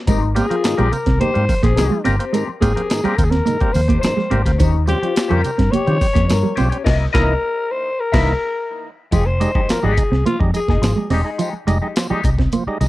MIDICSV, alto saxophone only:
0, 0, Header, 1, 2, 480
1, 0, Start_track
1, 0, Key_signature, -4, "minor"
1, 0, Tempo, 566038
1, 64, Time_signature, 4, 2, 24, 8
1, 10928, End_track
2, 0, Start_track
2, 0, Title_t, "Alto saxophone"
2, 0, Program_c, 0, 65
2, 305, Note_on_c, 0, 68, 96
2, 784, Note_on_c, 0, 70, 88
2, 797, Note_off_c, 0, 68, 0
2, 1017, Note_off_c, 0, 70, 0
2, 1022, Note_on_c, 0, 72, 125
2, 1357, Note_off_c, 0, 72, 0
2, 1386, Note_on_c, 0, 68, 87
2, 1719, Note_off_c, 0, 68, 0
2, 2214, Note_on_c, 0, 68, 91
2, 2687, Note_on_c, 0, 70, 90
2, 2700, Note_off_c, 0, 68, 0
2, 2747, Note_on_c, 0, 68, 75
2, 2760, Note_off_c, 0, 70, 0
2, 2803, Note_on_c, 0, 70, 104
2, 2816, Note_off_c, 0, 68, 0
2, 3164, Note_on_c, 0, 72, 109
2, 3177, Note_off_c, 0, 70, 0
2, 3398, Note_off_c, 0, 72, 0
2, 3404, Note_on_c, 0, 72, 105
2, 3746, Note_off_c, 0, 72, 0
2, 4148, Note_on_c, 0, 67, 98
2, 4507, Note_on_c, 0, 70, 95
2, 4520, Note_off_c, 0, 67, 0
2, 4847, Note_on_c, 0, 73, 127
2, 4860, Note_off_c, 0, 70, 0
2, 5574, Note_off_c, 0, 73, 0
2, 6062, Note_on_c, 0, 70, 113
2, 6543, Note_on_c, 0, 72, 107
2, 6556, Note_off_c, 0, 70, 0
2, 6785, Note_on_c, 0, 70, 109
2, 6798, Note_off_c, 0, 72, 0
2, 7503, Note_off_c, 0, 70, 0
2, 7738, Note_on_c, 0, 68, 105
2, 7853, Note_on_c, 0, 72, 100
2, 7866, Note_off_c, 0, 68, 0
2, 8228, Note_on_c, 0, 70, 87
2, 8241, Note_off_c, 0, 72, 0
2, 8351, Note_on_c, 0, 68, 89
2, 8364, Note_off_c, 0, 70, 0
2, 8699, Note_off_c, 0, 68, 0
2, 8705, Note_on_c, 0, 65, 97
2, 8812, Note_off_c, 0, 65, 0
2, 8957, Note_on_c, 0, 68, 85
2, 9397, Note_off_c, 0, 68, 0
2, 10928, End_track
0, 0, End_of_file